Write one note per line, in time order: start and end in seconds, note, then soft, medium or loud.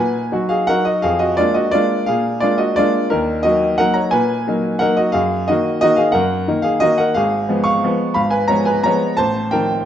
0.00 0.31 A#2 medium
0.00 0.46 B4 medium
0.00 0.49 G#5 medium
0.32 0.65 F#3 medium
0.32 0.65 D#4 medium
0.32 0.65 F#4 medium
0.49 0.67 G#4 medium
0.49 0.68 F5 medium
0.67 1.00 F#3 medium
0.67 1.00 D#4 medium
0.67 0.85 F#4 medium
0.67 0.85 A#4 medium
0.67 0.86 F#5 loud
0.85 1.02 F#4 medium
0.85 1.03 D#5 medium
1.02 1.37 F2 medium
1.02 1.19 G#4 medium
1.02 1.20 F5 loud
1.19 1.36 F#4 medium
1.19 1.37 D#5 medium
1.37 1.70 G#3 medium
1.37 1.71 A#3 medium
1.37 1.71 D4 medium
1.37 1.54 F4 medium
1.37 1.55 D5 medium
1.54 1.72 F#4 medium
1.54 1.73 D#5 medium
1.71 2.05 G#3 medium
1.71 2.05 A#3 medium
1.71 2.05 D4 medium
1.71 2.05 F4 medium
1.71 2.07 D5 loud
2.06 2.42 A#2 medium
2.06 2.40 G#4 medium
2.06 2.42 F5 loud
2.40 2.74 G#3 medium
2.40 2.75 A#3 medium
2.40 2.75 D4 medium
2.40 2.59 F4 medium
2.40 2.59 D5 medium
2.58 2.76 F#4 medium
2.58 2.77 D#5 medium
2.76 3.08 G#3 medium
2.76 3.09 A#3 medium
2.76 3.09 D4 medium
2.76 3.09 F4 medium
2.76 3.11 D5 medium
3.10 3.44 D#2 medium
3.10 3.42 D#4 medium
3.10 3.44 A#4 medium
3.43 3.75 F#3 medium
3.43 3.76 A#3 soft
3.43 3.76 D#4 medium
3.43 3.76 F#4 medium
3.43 3.78 D#5 medium
3.78 4.10 F#3 medium
3.78 4.10 A#3 medium
3.78 4.10 D#4 medium
3.78 3.95 A#4 medium
3.78 3.96 F#5 loud
3.94 4.11 C#5 medium
3.94 4.12 A#5 medium
4.11 4.45 A#2 medium
4.11 4.76 B4 medium
4.11 4.79 G#5 loud
4.47 4.78 F#3 medium
4.47 4.78 A#3 medium
4.47 4.78 D#4 medium
4.79 5.11 F#3 medium
4.79 5.11 A#3 medium
4.79 5.12 D#4 medium
4.79 4.96 A#4 medium
4.79 4.97 F#5 loud
4.97 5.13 F#4 medium
4.97 5.14 D#5 medium
5.12 5.47 F#2 medium
5.12 5.45 G#4 medium
5.12 5.47 F5 loud
5.48 5.80 D#3 medium
5.48 5.80 A#3 medium
5.48 5.80 D#4 medium
5.48 5.80 F#4 medium
5.48 5.80 D#5 medium
5.81 6.12 D#3 medium
5.81 6.12 A#3 medium
5.81 6.13 D#4 medium
5.81 5.98 F#4 medium
5.81 5.98 D#5 loud
5.96 6.13 G#4 medium
5.96 6.13 F5 medium
6.12 6.46 F#2 medium
6.12 6.60 A#4 medium
6.12 6.63 F#5 loud
6.48 6.79 D#3 medium
6.48 6.79 A#3 medium
6.48 6.79 D#4 medium
6.62 6.81 G#4 medium
6.62 6.81 F5 loud
6.80 7.12 D#3 medium
6.80 7.13 A#3 medium
6.80 7.13 D#4 medium
6.80 6.98 F#4 medium
6.80 6.98 D#5 loud
6.98 7.15 A#4 medium
6.98 7.15 F#5 medium
7.14 7.48 G#1 medium
7.14 7.62 G#4 medium
7.14 7.63 F5 loud
7.48 7.79 F3 medium
7.48 7.79 G#3 medium
7.48 7.79 B3 medium
7.64 8.12 F5 medium
7.64 8.15 C#6 loud
7.84 8.13 F3 medium
7.84 8.13 G#3 medium
7.84 8.13 B3 medium
8.14 8.49 G#1 medium
8.14 8.31 F5 medium
8.14 8.32 B5 medium
8.31 8.48 B4 medium
8.31 8.49 G#5 medium
8.48 8.81 F3 medium
8.48 8.81 G#3 medium
8.48 8.82 B3 medium
8.48 8.65 C#5 medium
8.48 8.66 A#5 loud
8.65 8.83 B4 medium
8.65 8.84 G#5 medium
8.83 9.16 F3 medium
8.83 9.16 G#3 medium
8.83 9.16 B3 medium
8.83 9.17 C#5 medium
8.83 9.18 A#5 loud
9.17 9.52 A1 medium
9.17 9.50 C5 medium
9.17 9.52 A5 loud
9.51 9.85 D#3 medium
9.51 9.84 F3 medium
9.51 9.85 C4 medium
9.51 9.85 A#4 medium
9.51 9.85 G5 medium